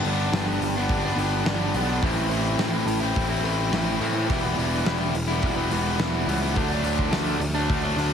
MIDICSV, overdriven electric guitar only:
0, 0, Header, 1, 3, 480
1, 0, Start_track
1, 0, Tempo, 567108
1, 1711, Time_signature, 4, 2, 24, 8
1, 6883, End_track
2, 0, Start_track
2, 0, Title_t, "Overdriven electric guitar"
2, 0, Program_c, 0, 29
2, 0, Note_on_c, 0, 43, 90
2, 31, Note_on_c, 0, 50, 75
2, 42, Note_on_c, 0, 55, 76
2, 48, Note_on_c, 0, 59, 86
2, 59, Note_on_c, 0, 62, 89
2, 149, Note_off_c, 0, 43, 0
2, 274, Note_off_c, 0, 50, 0
2, 279, Note_on_c, 0, 43, 102
2, 281, Note_off_c, 0, 55, 0
2, 283, Note_off_c, 0, 59, 0
2, 284, Note_on_c, 0, 50, 106
2, 291, Note_on_c, 0, 55, 100
2, 294, Note_off_c, 0, 62, 0
2, 294, Note_on_c, 0, 59, 105
2, 305, Note_on_c, 0, 62, 101
2, 380, Note_off_c, 0, 62, 0
2, 391, Note_on_c, 0, 62, 74
2, 396, Note_off_c, 0, 59, 0
2, 405, Note_off_c, 0, 55, 0
2, 406, Note_on_c, 0, 59, 67
2, 415, Note_on_c, 0, 55, 60
2, 519, Note_off_c, 0, 55, 0
2, 519, Note_off_c, 0, 59, 0
2, 520, Note_off_c, 0, 50, 0
2, 524, Note_off_c, 0, 62, 0
2, 635, Note_off_c, 0, 43, 0
2, 642, Note_on_c, 0, 62, 71
2, 655, Note_on_c, 0, 59, 72
2, 666, Note_on_c, 0, 55, 61
2, 870, Note_off_c, 0, 62, 0
2, 878, Note_off_c, 0, 59, 0
2, 880, Note_on_c, 0, 62, 74
2, 888, Note_on_c, 0, 59, 73
2, 890, Note_off_c, 0, 55, 0
2, 901, Note_on_c, 0, 55, 59
2, 992, Note_on_c, 0, 50, 77
2, 993, Note_off_c, 0, 55, 0
2, 995, Note_off_c, 0, 59, 0
2, 1003, Note_on_c, 0, 55, 84
2, 1005, Note_on_c, 0, 59, 85
2, 1009, Note_off_c, 0, 62, 0
2, 1019, Note_on_c, 0, 62, 85
2, 1230, Note_off_c, 0, 50, 0
2, 1231, Note_on_c, 0, 43, 103
2, 1234, Note_off_c, 0, 55, 0
2, 1240, Note_on_c, 0, 50, 88
2, 1244, Note_on_c, 0, 55, 104
2, 1245, Note_off_c, 0, 59, 0
2, 1246, Note_off_c, 0, 62, 0
2, 1256, Note_on_c, 0, 59, 101
2, 1256, Note_on_c, 0, 62, 97
2, 1469, Note_off_c, 0, 50, 0
2, 1476, Note_off_c, 0, 55, 0
2, 1479, Note_on_c, 0, 50, 84
2, 1483, Note_off_c, 0, 59, 0
2, 1486, Note_on_c, 0, 55, 79
2, 1491, Note_off_c, 0, 62, 0
2, 1493, Note_on_c, 0, 59, 91
2, 1501, Note_on_c, 0, 62, 92
2, 1579, Note_off_c, 0, 62, 0
2, 1590, Note_on_c, 0, 62, 77
2, 1591, Note_off_c, 0, 59, 0
2, 1602, Note_on_c, 0, 59, 69
2, 1605, Note_off_c, 0, 55, 0
2, 1615, Note_on_c, 0, 55, 65
2, 1696, Note_off_c, 0, 62, 0
2, 1697, Note_off_c, 0, 43, 0
2, 1701, Note_off_c, 0, 50, 0
2, 1702, Note_off_c, 0, 59, 0
2, 1709, Note_off_c, 0, 55, 0
2, 1713, Note_on_c, 0, 45, 88
2, 1721, Note_on_c, 0, 52, 95
2, 1723, Note_on_c, 0, 57, 99
2, 1731, Note_on_c, 0, 60, 97
2, 1733, Note_on_c, 0, 64, 106
2, 1828, Note_off_c, 0, 64, 0
2, 1831, Note_on_c, 0, 64, 70
2, 1832, Note_off_c, 0, 60, 0
2, 1842, Note_on_c, 0, 60, 71
2, 1843, Note_off_c, 0, 57, 0
2, 1853, Note_on_c, 0, 57, 63
2, 1942, Note_off_c, 0, 52, 0
2, 1943, Note_off_c, 0, 57, 0
2, 1945, Note_on_c, 0, 52, 87
2, 1950, Note_off_c, 0, 60, 0
2, 1953, Note_on_c, 0, 57, 84
2, 1961, Note_on_c, 0, 60, 83
2, 1964, Note_off_c, 0, 64, 0
2, 1967, Note_on_c, 0, 64, 91
2, 2072, Note_off_c, 0, 45, 0
2, 2187, Note_on_c, 0, 45, 107
2, 2189, Note_off_c, 0, 52, 0
2, 2192, Note_on_c, 0, 52, 106
2, 2193, Note_off_c, 0, 57, 0
2, 2197, Note_off_c, 0, 60, 0
2, 2204, Note_on_c, 0, 57, 107
2, 2207, Note_on_c, 0, 60, 104
2, 2209, Note_off_c, 0, 64, 0
2, 2212, Note_on_c, 0, 64, 120
2, 2299, Note_off_c, 0, 64, 0
2, 2302, Note_on_c, 0, 64, 77
2, 2304, Note_off_c, 0, 60, 0
2, 2314, Note_on_c, 0, 60, 65
2, 2317, Note_off_c, 0, 57, 0
2, 2327, Note_on_c, 0, 57, 66
2, 2413, Note_off_c, 0, 57, 0
2, 2415, Note_off_c, 0, 60, 0
2, 2418, Note_off_c, 0, 52, 0
2, 2425, Note_off_c, 0, 64, 0
2, 2539, Note_on_c, 0, 64, 81
2, 2549, Note_off_c, 0, 45, 0
2, 2555, Note_on_c, 0, 60, 74
2, 2565, Note_on_c, 0, 57, 65
2, 2765, Note_off_c, 0, 64, 0
2, 2775, Note_on_c, 0, 64, 80
2, 2780, Note_off_c, 0, 60, 0
2, 2790, Note_on_c, 0, 60, 72
2, 2793, Note_off_c, 0, 57, 0
2, 2803, Note_on_c, 0, 57, 60
2, 2905, Note_off_c, 0, 57, 0
2, 2906, Note_on_c, 0, 52, 84
2, 2912, Note_off_c, 0, 60, 0
2, 2915, Note_off_c, 0, 64, 0
2, 2915, Note_on_c, 0, 57, 85
2, 2922, Note_on_c, 0, 60, 90
2, 2925, Note_on_c, 0, 64, 99
2, 3142, Note_off_c, 0, 52, 0
2, 3142, Note_on_c, 0, 45, 91
2, 3143, Note_off_c, 0, 57, 0
2, 3152, Note_on_c, 0, 52, 99
2, 3153, Note_on_c, 0, 57, 103
2, 3155, Note_off_c, 0, 60, 0
2, 3161, Note_off_c, 0, 64, 0
2, 3165, Note_on_c, 0, 60, 95
2, 3171, Note_on_c, 0, 64, 111
2, 3362, Note_off_c, 0, 52, 0
2, 3373, Note_off_c, 0, 57, 0
2, 3373, Note_on_c, 0, 52, 86
2, 3383, Note_on_c, 0, 57, 91
2, 3385, Note_off_c, 0, 60, 0
2, 3394, Note_off_c, 0, 64, 0
2, 3395, Note_on_c, 0, 60, 92
2, 3404, Note_on_c, 0, 64, 91
2, 3496, Note_off_c, 0, 64, 0
2, 3506, Note_on_c, 0, 64, 81
2, 3512, Note_off_c, 0, 60, 0
2, 3522, Note_on_c, 0, 60, 71
2, 3524, Note_off_c, 0, 57, 0
2, 3534, Note_on_c, 0, 57, 66
2, 3607, Note_off_c, 0, 52, 0
2, 3612, Note_off_c, 0, 45, 0
2, 3614, Note_off_c, 0, 64, 0
2, 3619, Note_on_c, 0, 52, 95
2, 3622, Note_off_c, 0, 60, 0
2, 3627, Note_off_c, 0, 57, 0
2, 3630, Note_on_c, 0, 55, 101
2, 3639, Note_on_c, 0, 59, 101
2, 3648, Note_on_c, 0, 64, 104
2, 3729, Note_off_c, 0, 64, 0
2, 3739, Note_on_c, 0, 64, 75
2, 3744, Note_off_c, 0, 59, 0
2, 3754, Note_on_c, 0, 59, 71
2, 3756, Note_off_c, 0, 55, 0
2, 3766, Note_on_c, 0, 55, 68
2, 3850, Note_off_c, 0, 52, 0
2, 3860, Note_on_c, 0, 52, 83
2, 3863, Note_off_c, 0, 55, 0
2, 3872, Note_off_c, 0, 59, 0
2, 3873, Note_on_c, 0, 55, 90
2, 3880, Note_off_c, 0, 64, 0
2, 3882, Note_on_c, 0, 59, 87
2, 3891, Note_on_c, 0, 64, 99
2, 4089, Note_off_c, 0, 52, 0
2, 4099, Note_on_c, 0, 52, 90
2, 4103, Note_off_c, 0, 55, 0
2, 4112, Note_off_c, 0, 59, 0
2, 4113, Note_on_c, 0, 55, 109
2, 4115, Note_off_c, 0, 64, 0
2, 4122, Note_on_c, 0, 59, 104
2, 4125, Note_on_c, 0, 64, 122
2, 4216, Note_off_c, 0, 64, 0
2, 4226, Note_on_c, 0, 64, 72
2, 4228, Note_off_c, 0, 59, 0
2, 4239, Note_on_c, 0, 59, 64
2, 4240, Note_off_c, 0, 55, 0
2, 4250, Note_on_c, 0, 55, 67
2, 4346, Note_off_c, 0, 52, 0
2, 4349, Note_off_c, 0, 59, 0
2, 4350, Note_off_c, 0, 55, 0
2, 4356, Note_off_c, 0, 64, 0
2, 4465, Note_on_c, 0, 64, 80
2, 4482, Note_on_c, 0, 59, 67
2, 4493, Note_on_c, 0, 55, 65
2, 4693, Note_off_c, 0, 64, 0
2, 4703, Note_off_c, 0, 59, 0
2, 4703, Note_on_c, 0, 64, 79
2, 4713, Note_on_c, 0, 59, 75
2, 4718, Note_off_c, 0, 55, 0
2, 4728, Note_on_c, 0, 55, 67
2, 4822, Note_on_c, 0, 52, 83
2, 4828, Note_off_c, 0, 55, 0
2, 4836, Note_off_c, 0, 59, 0
2, 4837, Note_off_c, 0, 64, 0
2, 4838, Note_on_c, 0, 55, 80
2, 4846, Note_on_c, 0, 59, 95
2, 4847, Note_on_c, 0, 64, 86
2, 5061, Note_off_c, 0, 52, 0
2, 5066, Note_off_c, 0, 55, 0
2, 5071, Note_on_c, 0, 52, 91
2, 5073, Note_off_c, 0, 59, 0
2, 5077, Note_on_c, 0, 55, 97
2, 5083, Note_on_c, 0, 59, 94
2, 5084, Note_off_c, 0, 64, 0
2, 5094, Note_on_c, 0, 64, 105
2, 5292, Note_off_c, 0, 52, 0
2, 5302, Note_off_c, 0, 55, 0
2, 5302, Note_on_c, 0, 52, 84
2, 5310, Note_off_c, 0, 59, 0
2, 5312, Note_on_c, 0, 55, 83
2, 5320, Note_off_c, 0, 64, 0
2, 5320, Note_on_c, 0, 59, 92
2, 5330, Note_on_c, 0, 64, 91
2, 5410, Note_off_c, 0, 64, 0
2, 5420, Note_on_c, 0, 64, 79
2, 5421, Note_off_c, 0, 59, 0
2, 5432, Note_off_c, 0, 55, 0
2, 5432, Note_on_c, 0, 59, 68
2, 5442, Note_on_c, 0, 55, 66
2, 5531, Note_off_c, 0, 64, 0
2, 5532, Note_off_c, 0, 52, 0
2, 5537, Note_off_c, 0, 59, 0
2, 5538, Note_on_c, 0, 50, 85
2, 5542, Note_off_c, 0, 55, 0
2, 5555, Note_on_c, 0, 54, 91
2, 5560, Note_on_c, 0, 57, 95
2, 5566, Note_on_c, 0, 62, 98
2, 5667, Note_off_c, 0, 62, 0
2, 5670, Note_on_c, 0, 62, 75
2, 5677, Note_off_c, 0, 57, 0
2, 5686, Note_off_c, 0, 54, 0
2, 5687, Note_on_c, 0, 57, 65
2, 5696, Note_on_c, 0, 54, 59
2, 5768, Note_off_c, 0, 50, 0
2, 5778, Note_off_c, 0, 54, 0
2, 5778, Note_on_c, 0, 50, 86
2, 5788, Note_on_c, 0, 54, 82
2, 5790, Note_off_c, 0, 57, 0
2, 5800, Note_on_c, 0, 57, 92
2, 5802, Note_off_c, 0, 62, 0
2, 5806, Note_on_c, 0, 62, 94
2, 6006, Note_off_c, 0, 50, 0
2, 6016, Note_on_c, 0, 50, 102
2, 6018, Note_off_c, 0, 54, 0
2, 6025, Note_off_c, 0, 57, 0
2, 6028, Note_on_c, 0, 54, 105
2, 6035, Note_on_c, 0, 57, 97
2, 6037, Note_off_c, 0, 62, 0
2, 6040, Note_on_c, 0, 62, 114
2, 6141, Note_off_c, 0, 62, 0
2, 6145, Note_off_c, 0, 57, 0
2, 6145, Note_on_c, 0, 62, 66
2, 6155, Note_on_c, 0, 57, 68
2, 6162, Note_off_c, 0, 54, 0
2, 6172, Note_on_c, 0, 54, 57
2, 6260, Note_off_c, 0, 50, 0
2, 6262, Note_off_c, 0, 57, 0
2, 6263, Note_off_c, 0, 54, 0
2, 6272, Note_off_c, 0, 62, 0
2, 6385, Note_on_c, 0, 62, 81
2, 6394, Note_on_c, 0, 57, 67
2, 6406, Note_on_c, 0, 54, 59
2, 6614, Note_off_c, 0, 62, 0
2, 6621, Note_off_c, 0, 57, 0
2, 6624, Note_on_c, 0, 62, 75
2, 6631, Note_on_c, 0, 57, 63
2, 6634, Note_off_c, 0, 54, 0
2, 6644, Note_on_c, 0, 54, 57
2, 6742, Note_on_c, 0, 50, 82
2, 6743, Note_off_c, 0, 54, 0
2, 6753, Note_off_c, 0, 57, 0
2, 6753, Note_on_c, 0, 54, 82
2, 6758, Note_off_c, 0, 62, 0
2, 6763, Note_on_c, 0, 57, 86
2, 6768, Note_on_c, 0, 62, 88
2, 6883, Note_off_c, 0, 50, 0
2, 6883, Note_off_c, 0, 54, 0
2, 6883, Note_off_c, 0, 57, 0
2, 6883, Note_off_c, 0, 62, 0
2, 6883, End_track
3, 0, Start_track
3, 0, Title_t, "Muted overdriven electric guitar strokes"
3, 530, Note_on_c, 9, 29, 50
3, 614, Note_off_c, 9, 29, 0
3, 2421, Note_on_c, 9, 29, 47
3, 2506, Note_off_c, 9, 29, 0
3, 4356, Note_on_c, 9, 29, 48
3, 4441, Note_off_c, 9, 29, 0
3, 6270, Note_on_c, 9, 29, 43
3, 6355, Note_off_c, 9, 29, 0
3, 6883, End_track
0, 0, End_of_file